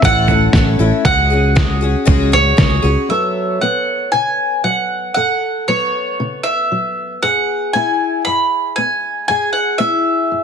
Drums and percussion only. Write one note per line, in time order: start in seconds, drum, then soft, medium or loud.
0.02 kick loud
0.02 floor tom loud
0.28 floor tom medium
0.53 kick medium
0.53 snare medium
1.05 kick loud
1.05 floor tom loud
1.56 kick loud
1.56 snare medium
2.07 kick loud
2.07 floor tom loud
2.33 floor tom medium
2.58 kick medium
2.58 snare loud